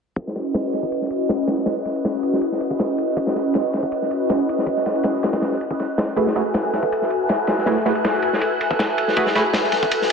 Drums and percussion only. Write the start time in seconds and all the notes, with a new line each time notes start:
0.16 kick, ride
0.27 snare
0.35 snare, ride
0.54 snare, ride
0.64 snare
0.73 snare, ride
0.83 kick
0.92 ride
1.01 snare
1.10 ride
1.29 snare, ride
1.47 snare, ride
1.58 snare
1.66 snare, ride
1.76 snare
1.85 snare, ride
1.96 ride
2.05 snare, ride
2.15 snare
2.23 ride
2.33 snare
2.41 ride
2.52 snare
2.60 ride
2.70 kick
2.79 snare, ride
2.98 ride
3.17 kick, ride
3.27 snare
3.35 snare, ride
3.54 snare, ride
3.65 snare
3.73 snare, ride
3.83 kick
3.92 ride
4.02 snare
4.11 ride
4.29 snare, ride
4.49 ride
4.58 snare
4.66 kick, ride
4.77 snare
4.86 snare, ride
4.95 ride
5.03 snare, ride
5.15 snare
5.23 snare, ride
5.33 snare, ride
5.42 snare, ride
5.52 snare
5.61 ride
5.71 kick
5.79 snare, ride
5.98 snare, ride
6.08 snare
6.16 kick, ride
6.27 snare
6.35 snare, ride
6.54 snare, ride
6.64 snare
6.73 snare, ride
6.83 kick
6.92 ride
7.02 snare
7.10 ride
7.29 snare, ride
7.47 snare, ride
7.58 snare
7.66 snare, ride
7.76 snare
7.85 snare, ride
7.95 ride
8.04 snare, ride
8.13 snare
8.22 ride
8.33 snare
8.41 ride
8.61 ride
8.71 kick
8.79 snare, ride
8.98 ride
9.08 snare
9.16 kick, ride
9.26 snare
9.35 snare, ride
9.53 snare, ride
9.64 snare
9.72 snare, ride
9.83 kick
9.91 ride
10.02 snare